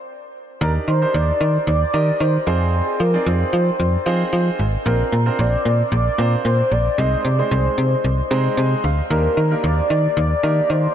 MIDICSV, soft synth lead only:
0, 0, Header, 1, 2, 480
1, 0, Start_track
1, 0, Key_signature, -3, "major"
1, 0, Tempo, 530973
1, 551, Time_signature, 4, 2, 24, 8
1, 9894, End_track
2, 0, Start_track
2, 0, Title_t, "Soft synth lead"
2, 0, Program_c, 0, 80
2, 550, Note_on_c, 0, 70, 109
2, 658, Note_off_c, 0, 70, 0
2, 792, Note_on_c, 0, 72, 100
2, 1034, Note_on_c, 0, 74, 112
2, 1047, Note_off_c, 0, 72, 0
2, 1506, Note_off_c, 0, 74, 0
2, 1511, Note_on_c, 0, 74, 122
2, 1993, Note_on_c, 0, 72, 109
2, 2007, Note_off_c, 0, 74, 0
2, 2232, Note_on_c, 0, 68, 99
2, 2246, Note_off_c, 0, 72, 0
2, 2713, Note_on_c, 0, 70, 87
2, 2726, Note_off_c, 0, 68, 0
2, 2953, Note_on_c, 0, 72, 97
2, 2966, Note_off_c, 0, 70, 0
2, 3912, Note_off_c, 0, 72, 0
2, 4393, Note_on_c, 0, 70, 96
2, 4872, Note_on_c, 0, 74, 106
2, 4885, Note_off_c, 0, 70, 0
2, 5346, Note_off_c, 0, 74, 0
2, 5351, Note_on_c, 0, 74, 115
2, 5797, Note_off_c, 0, 74, 0
2, 5830, Note_on_c, 0, 72, 101
2, 6071, Note_on_c, 0, 74, 105
2, 6085, Note_off_c, 0, 72, 0
2, 6308, Note_on_c, 0, 75, 118
2, 6322, Note_off_c, 0, 74, 0
2, 6550, Note_on_c, 0, 74, 105
2, 6563, Note_off_c, 0, 75, 0
2, 6789, Note_on_c, 0, 72, 91
2, 6802, Note_off_c, 0, 74, 0
2, 7510, Note_off_c, 0, 72, 0
2, 8232, Note_on_c, 0, 70, 106
2, 8711, Note_on_c, 0, 74, 115
2, 8725, Note_off_c, 0, 70, 0
2, 8948, Note_off_c, 0, 74, 0
2, 8953, Note_on_c, 0, 74, 115
2, 9175, Note_off_c, 0, 74, 0
2, 9193, Note_on_c, 0, 74, 122
2, 9672, Note_on_c, 0, 72, 110
2, 9685, Note_off_c, 0, 74, 0
2, 9894, Note_off_c, 0, 72, 0
2, 9894, End_track
0, 0, End_of_file